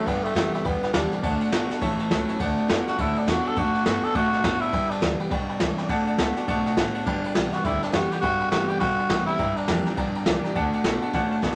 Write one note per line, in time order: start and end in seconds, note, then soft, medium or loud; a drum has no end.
0.06 0.63 G2 loud
0.06 0.34 G2 medium
0.06 0.23 G2 medium
0.06 0.34 D3 medium
0.06 0.26 B3 loud
0.06 0.18 D5 loud
0.06 0.18 G5 medium
0.06 0.18 B5 loud
0.06 kick loud
0.06 ride medium
0.24 0.35 A3 medium
0.24 0.32 D5 medium
0.24 0.32 G5 medium
0.24 0.32 B5 medium
0.24 muted upright bass stroke medium
0.24 ride medium
0.35 0.52 F#2 medium
0.35 0.62 G2 medium
0.35 0.53 D3 loud
0.35 0.63 E3 medium
0.35 0.53 G3 medium
0.35 0.53 A3 medium
0.35 0.53 B3 loud
0.35 0.52 G4 loud
0.35 0.47 D5 medium
0.35 0.47 G5 medium
0.35 0.47 B5 medium
0.35 snare loud
0.35 ride medium
0.53 0.67 A3 medium
0.53 0.65 B3 medium
0.53 0.64 G4 medium
0.53 0.61 D5 medium
0.53 0.61 G5 medium
0.53 0.61 B5 medium
0.53 muted upright bass stroke medium
0.53 snare soft
0.53 ride medium
0.65 0.82 E2 medium
0.65 0.92 G2 medium
0.65 0.92 D3 medium
0.65 0.83 B3 medium
0.65 0.76 D5 loud
0.65 0.76 G5 medium
0.65 0.76 B5 loud
0.65 kick loud
0.65 ride medium
0.82 0.88 B3 medium
0.82 0.90 D5 medium
0.82 0.90 G5 medium
0.82 0.90 B5 medium
0.82 muted upright bass stroke medium
0.82 snare soft
0.82 ride medium
0.93 1.11 D#2 medium
0.93 1.21 G2 medium
0.93 1.11 D3 loud
0.93 1.21 E3 medium
0.93 1.11 G3 medium
0.93 1.11 B3 medium
0.93 1.21 D4 medium
0.93 1.10 G4 loud
0.93 1.05 D5 medium
0.93 1.05 G5 medium
0.93 1.05 B5 medium
0.93 snare loud
0.93 ride medium
1.11 1.24 B3 medium
1.11 1.23 G4 medium
1.11 1.19 D5 medium
1.11 1.20 G5 medium
1.11 1.20 B5 medium
1.11 muted upright bass stroke medium
1.11 snare soft
1.11 ride medium
1.22 1.40 D2 medium
1.22 1.50 D3 medium
1.22 1.51 D3 medium
1.22 1.50 A3 loud
1.22 1.66 D4 medium
1.22 1.34 D5 loud
1.22 1.34 F#5 medium
1.22 1.34 A5 loud
1.22 kick loud
1.22 ride medium
1.41 1.48 D5 medium
1.41 1.48 F#5 medium
1.41 1.48 A5 medium
1.41 muted upright bass stroke medium
1.41 ride medium
1.52 1.70 G1 medium
1.52 1.79 D3 medium
1.52 1.69 D3 medium
1.52 1.70 A3 loud
1.52 1.79 B3 loud
1.52 1.70 D4 medium
1.52 1.68 F#4 loud
1.52 1.63 D5 medium
1.52 1.64 F#5 medium
1.52 1.64 A5 medium
1.52 snare loud
1.52 ride medium
1.69 1.82 D4 soft
1.69 1.81 F#4 medium
1.69 1.77 D5 medium
1.69 1.77 F#5 medium
1.69 1.78 A5 loud
1.69 muted upright bass stroke medium
1.69 snare soft
1.69 ride medium
1.81 1.99 A1 medium
1.81 2.08 A2 medium
1.81 2.38 A2 medium
1.81 2.08 E3 medium
1.81 1.92 C#5 loud
1.81 1.92 E5 loud
1.81 1.93 A5 loud
1.81 kick loud
1.81 ride medium
1.99 2.06 C#5 medium
1.99 2.07 E5 medium
1.99 2.07 A5 medium
1.99 muted upright bass stroke medium
1.99 snare soft
1.99 ride medium
2.10 2.28 C#2 medium
2.10 2.37 A2 medium
2.10 2.28 E3 medium
2.10 2.38 F#3 medium
2.10 2.28 A3 medium
2.10 2.28 C#4 medium
2.10 2.27 E4 loud
2.10 2.22 C#5 medium
2.10 2.22 E5 medium
2.10 2.22 A5 loud
2.10 kick medium
2.10 snare loud
2.10 ride medium
2.28 2.40 C#4 soft
2.28 2.39 E4 medium
2.28 2.36 C#5 medium
2.28 2.36 E5 medium
2.28 2.36 A5 loud
2.28 muted upright bass stroke medium
2.28 snare soft
2.28 ride medium
2.39 2.57 D2 medium
2.39 2.67 D3 medium
2.39 2.67 A3 loud
2.39 2.68 D4 medium
2.39 2.51 D5 loud
2.39 2.51 F#5 medium
2.39 2.51 A5 loud
2.39 kick loud
2.39 ride medium
2.58 2.65 D5 medium
2.58 2.65 F#5 medium
2.58 2.65 A5 medium
2.58 muted upright bass stroke medium
2.58 ride medium
2.68 2.86 F#2 medium
2.68 2.86 D3 medium
2.68 2.96 D3 medium
2.68 2.86 A3 medium
2.68 2.96 B3 medium
2.68 2.87 D4 loud
2.68 2.79 D4 medium
2.68 2.85 F#4 loud
2.68 2.80 D5 medium
2.68 2.80 F#5 medium
2.68 2.80 A5 medium
2.68 snare loud
2.68 ride medium
2.87 2.99 D4 medium
2.87 2.98 F#4 medium
2.87 3.02 F#4 medium
2.87 2.94 D5 medium
2.87 2.94 F#5 medium
2.87 2.94 A5 medium
2.87 muted upright bass stroke medium
2.87 snare soft
2.87 ride medium
2.98 3.15 D2 medium
2.98 3.54 A2 medium
2.98 3.25 D3 medium
2.98 3.25 A3 medium
2.98 3.20 E4 loud
2.98 3.09 D5 loud
2.98 3.09 F#5 medium
2.98 3.09 A5 loud
2.98 kick loud
2.98 ride medium
3.16 3.31 D4 loud
3.16 3.23 D5 medium
3.16 3.23 F#5 medium
3.16 3.23 A5 medium
3.16 muted upright bass stroke medium
3.16 ride medium
3.26 3.44 E2 medium
3.26 3.44 D3 loud
3.26 3.54 D3 medium
3.26 3.45 A3 medium
3.26 3.55 B3 medium
3.26 3.45 D4 loud
3.26 3.49 F#4 loud
3.26 3.44 F#4 loud
3.26 3.38 D5 medium
3.26 3.38 F#5 medium
3.26 3.38 A5 medium
3.26 snare loud
3.26 ride medium
3.44 3.57 D4 soft
3.44 3.56 F#4 medium
3.44 3.60 A4 loud
3.44 3.52 D5 medium
3.44 3.52 F#5 medium
3.44 3.52 A5 medium
3.44 muted upright bass stroke medium
3.44 ride medium
3.56 3.74 F#2 medium
3.56 3.83 D3 medium
3.56 3.84 D3 medium
3.56 3.84 A3 medium
3.56 3.87 F#4 loud
3.56 3.67 D5 loud
3.56 3.67 F#5 loud
3.56 3.67 A5 loud
3.56 kick loud
3.56 ride medium
3.74 3.81 D5 medium
3.74 3.81 F#5 medium
3.74 3.81 A5 medium
3.74 muted upright bass stroke medium
3.74 ride medium
3.85 4.03 G2 medium
3.85 4.02 D3 medium
3.85 4.12 D3 medium
3.85 4.03 A3 loud
3.85 4.13 B3 loud
3.85 4.03 D4 medium
3.85 4.01 F#4 medium
3.85 4.05 F#4 medium
3.85 3.97 D5 medium
3.85 3.97 F#5 medium
3.85 snare loud
3.85 ride medium
4.02 4.15 D4 soft
4.02 4.14 F#4 medium
4.02 4.17 A4 loud
4.02 4.11 D5 medium
4.02 4.11 F#5 medium
4.02 4.11 A5 medium
4.02 muted upright bass stroke medium
4.02 ride medium
4.14 4.32 A2 medium
4.14 4.43 B2 medium
4.14 4.42 D3 medium
4.14 4.42 A3 medium
4.14 4.62 F#4 loud
4.14 4.26 D5 loud
4.14 4.26 F#5 loud
4.14 4.26 A5 loud
4.14 kick loud
4.14 ride medium
4.33 4.40 D5 medium
4.33 4.40 F#5 medium
4.33 4.40 A5 medium
4.33 muted upright bass stroke medium
4.33 snare soft
4.33 ride medium
4.43 4.61 F#2 loud
4.43 4.72 A2 medium
4.43 4.71 D3 medium
4.43 4.71 B3 medium
4.43 4.55 D5 medium
4.43 4.55 F#5 medium
4.43 4.55 A5 medium
4.43 kick medium
4.43 snare loud
4.43 ride medium
4.61 4.92 E4 loud
4.61 4.69 D5 medium
4.61 4.69 F#5 medium
4.61 4.69 A5 medium
4.61 muted upright bass stroke medium
4.61 ride medium
4.72 5.00 G2 medium
4.72 5.29 G2 loud
4.72 4.90 G2 loud
4.72 5.00 D3 loud
4.72 4.84 D5 loud
4.72 4.84 G5 medium
4.72 4.84 B5 loud
4.72 kick loud
4.72 ride medium
4.90 5.20 D4 loud
4.90 4.98 D5 medium
4.90 4.98 G5 medium
4.90 4.98 A5 medium
4.90 muted upright bass stroke soft
4.90 ride medium
5.01 5.19 D2 medium
5.01 5.29 G2 medium
5.01 5.19 D3 medium
5.01 5.29 E3 medium
5.01 5.19 G3 medium
5.01 5.19 B3 loud
5.01 5.19 G4 loud
5.01 5.13 D5 medium
5.01 5.13 G5 medium
5.01 5.13 B5 medium
5.01 snare loud
5.01 ride medium
5.19 5.32 B3 medium
5.19 5.31 G4 medium
5.19 5.27 D5 medium
5.19 5.27 G5 medium
5.19 5.27 B5 medium
5.19 muted upright bass stroke medium
5.19 ride medium
5.30 5.48 B1 medium
5.30 5.58 G2 medium
5.30 5.59 B2 loud
5.30 5.58 D3 loud
5.30 6.44 D4 medium
5.30 5.42 D5 loud
5.30 5.42 G5 medium
5.30 5.42 B5 loud
5.30 kick loud
5.30 ride medium
5.49 5.56 D5 medium
5.49 5.56 G5 medium
5.49 5.56 B5 medium
5.49 muted upright bass stroke medium
5.49 ride medium
5.60 5.76 C#2 medium
5.60 5.87 G2 medium
5.60 5.89 C#3 medium
5.60 5.88 E3 medium
5.60 5.71 D5 medium
5.60 5.71 G5 medium
5.60 5.71 B5 medium
5.60 snare loud
5.60 ride medium
5.77 5.85 D5 medium
5.77 5.85 G5 medium
5.77 5.85 B5 loud
5.77 muted upright bass stroke medium
5.77 snare soft
5.77 ride medium
5.88 6.06 D2 medium
5.88 6.16 D3 medium
5.88 6.17 D3 medium
5.88 6.16 A3 medium
5.88 6.00 D5 loud
5.88 6.01 F#5 loud
5.88 6.01 A5 loud
5.88 kick loud
5.88 ride medium
6.07 6.14 D5 medium
6.07 6.14 F#5 medium
6.07 6.14 A5 loud
6.07 muted upright bass stroke soft
6.07 ride medium
6.18 6.35 C#2 medium
6.18 6.45 D3 medium
6.18 6.36 D3 medium
6.18 6.36 A3 medium
6.18 6.46 B3 medium
6.18 6.37 D4 loud
6.18 6.35 F#4 loud
6.18 6.30 D5 medium
6.18 6.30 F#5 medium
6.18 6.30 A5 medium
6.18 snare loud
6.18 ride medium
6.36 6.49 D4 soft
6.36 6.48 F#4 medium
6.36 6.44 D5 loud
6.36 6.44 F#5 medium
6.36 6.44 A5 loud
6.36 muted upright bass stroke medium
6.36 snare soft
6.36 ride medium
6.47 6.65 B1 medium
6.47 6.77 B2 medium
6.47 6.75 D3 medium
6.47 6.75 A3 loud
6.47 6.59 D5 loud
6.47 6.59 F#5 loud
6.47 6.59 A5 loud
6.47 kick loud
6.47 ride medium
6.66 6.73 D5 medium
6.66 6.73 F#5 medium
6.66 6.73 A5 loud
6.66 muted upright bass stroke medium
6.66 snare soft
6.66 ride medium
6.77 6.94 A1 medium
6.77 7.06 A2 medium
6.77 7.04 D3 medium
6.77 7.04 B3 medium
6.77 6.89 D5 medium
6.77 6.89 F#5 medium
6.77 6.89 A5 loud
6.77 kick medium
6.77 snare loud
6.77 ride medium
6.95 7.02 D5 medium
6.95 7.02 F#5 medium
6.95 7.02 A5 medium
6.95 muted upright bass stroke medium
6.95 ride medium
7.06 7.24 G1 medium
7.06 7.33 G2 medium
7.06 7.62 G2 medium
7.06 7.33 D3 loud
7.06 7.33 D4 medium
7.06 7.18 D5 loud
7.06 7.17 G5 loud
7.06 7.18 B5 loud
7.06 kick loud
7.06 ride loud
7.24 7.32 D5 medium
7.24 7.32 G5 medium
7.24 7.32 B5 medium
7.24 muted upright bass stroke medium
7.24 ride medium
7.34 7.53 B1 medium
7.34 7.62 G2 medium
7.34 7.52 D3 medium
7.34 7.62 E3 medium
7.34 7.52 G3 medium
7.34 7.53 B3 medium
7.34 7.54 D4 medium
7.34 7.52 G4 medium
7.34 7.47 D5 medium
7.34 7.47 G5 medium
7.34 7.47 B5 medium
7.34 snare loud
7.34 ride medium
7.53 7.65 B3 soft
7.53 7.66 F#4 medium
7.53 7.64 G4 medium
7.53 7.61 D5 medium
7.53 7.61 G5 medium
7.53 7.61 B5 medium
7.53 muted upright bass stroke medium
7.53 snare soft
7.53 ride medium
7.64 7.82 D2 medium
7.64 7.91 G2 medium
7.64 7.91 D3 loud
7.64 7.82 E4 loud
7.64 7.76 D5 loud
7.64 7.76 G5 medium
7.64 7.76 B5 loud
7.64 kick loud
7.64 ride medium
7.82 7.95 D4 medium
7.82 7.90 D5 medium
7.82 7.90 G5 medium
7.82 7.90 B5 medium
7.82 muted upright bass stroke medium
7.82 snare soft
7.82 ride medium
7.92 8.11 F#2 medium
7.92 8.20 G2 medium
7.92 8.10 D3 loud
7.92 8.21 E3 loud
7.92 8.11 G3 medium
7.92 8.11 B3 loud
7.92 8.13 F#4 loud
7.92 8.09 G4 loud
7.92 8.05 D5 medium
7.92 8.05 G5 medium
7.92 8.05 B5 medium
7.92 snare loud
7.92 ride medium
8.10 8.23 B3 medium
8.10 8.22 G4 medium
8.10 8.21 G4 loud
8.10 8.19 D5 medium
8.10 8.19 G5 medium
8.10 8.19 B5 medium
8.10 muted upright bass stroke medium
8.10 snare soft
8.10 ride medium
8.21 8.49 G2 medium
8.21 8.79 G2 medium
8.21 8.40 G2 medium
8.21 8.50 D3 medium
8.21 8.49 F#4 loud
8.21 8.34 D5 loud
8.21 8.34 G5 medium
8.21 8.34 B5 loud
8.21 kick loud
8.21 ride medium
8.40 8.47 D5 medium
8.40 8.48 G5 medium
8.40 8.48 B5 medium
8.40 muted upright bass stroke medium
8.40 ride medium
8.51 8.79 G2 medium
8.51 8.69 A2 loud
8.51 8.79 D3 medium
8.51 8.79 E3 medium
8.51 8.80 G3 medium
8.51 8.80 B3 loud
8.51 8.70 F#4 loud
8.51 8.81 G4 loud
8.51 8.63 D5 medium
8.51 8.63 G5 medium
8.51 8.63 B5 medium
8.51 snare loud
8.51 ride medium
8.68 8.79 G4 loud
8.68 8.76 D5 medium
8.68 8.77 G5 medium
8.68 8.77 B5 medium
8.68 muted upright bass stroke medium
8.68 ride medium
8.79 9.08 G2 medium
8.79 8.98 B2 medium
8.79 9.08 D3 medium
8.79 9.24 F#4 loud
8.79 8.91 D5 loud
8.79 8.91 G5 loud
8.79 8.91 B5 loud
8.79 kick loud
8.79 ride medium
8.99 9.06 D5 medium
8.99 9.06 G5 medium
8.99 9.06 B5 medium
8.99 muted upright bass stroke medium
8.99 ride medium
9.09 9.37 G2 medium
9.09 9.27 A2 medium
9.09 9.27 D3 medium
9.09 9.37 E3 medium
9.09 9.27 G3 medium
9.09 9.28 B3 loud
9.09 9.25 G4 loud
9.09 9.20 D5 medium
9.09 9.20 G5 medium
9.09 9.20 B5 medium
9.09 kick medium
9.09 snare loud
9.09 ride medium
9.26 9.39 B3 medium
9.26 9.58 E4 loud
9.26 9.38 G4 medium
9.26 9.34 D5 medium
9.26 9.35 G5 medium
9.26 9.35 B5 medium
9.26 muted upright bass stroke medium
9.26 ride medium
9.39 9.66 G2 medium
9.39 9.95 G2 medium
9.39 9.57 G2 medium
9.39 9.66 D3 medium
9.39 9.50 D5 loud
9.39 9.50 G5 loud
9.39 9.50 A#5 loud
9.39 kick loud
9.39 ride medium
9.57 9.86 D4 medium
9.57 9.64 D5 medium
9.57 9.64 G5 medium
9.57 9.64 A#5 medium
9.57 muted upright bass stroke medium
9.57 ride medium
9.67 9.86 F2 loud
9.67 9.95 G2 medium
9.67 9.95 E3 loud
9.67 9.85 F3 medium
9.67 9.85 A#3 loud
9.67 9.86 D4 loud
9.67 9.84 G4 loud
9.67 9.79 D5 medium
9.67 9.79 G5 medium
9.67 9.79 A#5 medium
9.67 snare loud
9.67 ride medium
9.85 9.98 D4 soft
9.85 9.97 G4 medium
9.85 9.93 D5 medium
9.85 9.93 G5 medium
9.85 9.93 A#5 medium
9.85 muted upright bass stroke medium
9.85 snare soft
9.85 ride medium
9.96 10.15 A#1 medium
9.96 10.24 G2 medium
9.96 10.24 D3 loud
9.96 10.53 D3 medium
9.96 11.10 D4 medium
9.96 10.08 D5 loud
9.96 10.08 G5 medium
9.96 10.08 A#5 loud
9.96 kick loud
9.96 snare soft
9.96 ride medium
10.15 10.22 D5 medium
10.15 10.23 G5 medium
10.15 10.23 A#5 medium
10.15 muted upright bass stroke medium
10.15 ride medium
10.25 10.43 C2 medium
10.25 10.53 G2 medium
10.25 10.53 E3 loud
10.25 10.43 F3 medium
10.25 10.43 A#3 medium
10.25 10.44 D4 medium
10.25 10.42 G4 loud
10.25 10.37 D5 medium
10.25 10.38 G5 medium
10.25 10.38 A#5 medium
10.25 snare loud
10.25 ride medium
10.43 10.56 D4 soft
10.43 10.55 G4 medium
10.43 10.51 D5 medium
10.43 10.51 G5 medium
10.43 10.51 A#5 medium
10.43 muted upright bass stroke medium
10.43 snare soft
10.43 ride medium
10.55 10.73 D2 medium
10.55 10.82 D3 medium
10.55 10.83 D3 medium
10.55 10.82 A3 loud
10.55 10.66 D5 loud
10.55 10.66 F#5 loud
10.55 10.66 A5 loud
10.55 kick loud
10.55 ride medium
10.73 10.80 D5 medium
10.73 10.81 F#5 medium
10.73 10.81 A5 loud
10.73 muted upright bass stroke medium
10.73 ride medium
10.84 11.01 B1 medium
10.84 11.11 D3 medium
10.84 11.02 D3 medium
10.84 11.02 A3 medium
10.84 11.11 B3 medium
10.84 11.02 D4 loud
10.84 11.01 F#4 loud
10.84 10.96 D5 medium
10.84 10.96 F#5 medium
10.84 10.96 A5 loud
10.84 snare loud
10.84 ride medium
11.02 11.14 D4 soft
11.02 11.13 F#4 medium
11.02 11.09 D5 medium
11.02 11.09 F#5 medium
11.02 11.09 A5 loud
11.02 muted upright bass stroke medium
11.02 ride medium
11.13 11.31 A1 medium
11.13 11.41 C#3 medium
11.13 11.41 D3 medium
11.13 11.41 A3 medium
11.13 11.25 D5 loud
11.13 11.25 F#5 loud
11.13 11.25 A5 loud
11.13 kick loud
11.13 snare soft
11.13 ride medium
11.31 11.38 D5 medium
11.31 11.38 F#5 medium
11.31 11.38 A5 loud
11.31 muted upright bass stroke medium
11.31 ride medium
11.42 11.55 G1 medium
11.42 11.55 B2 medium
11.42 11.55 D3 medium
11.42 11.55 B3 loud
11.42 11.53 D5 medium
11.42 11.53 F#5 medium
11.42 11.54 A5 loud
11.42 kick medium
11.42 snare medium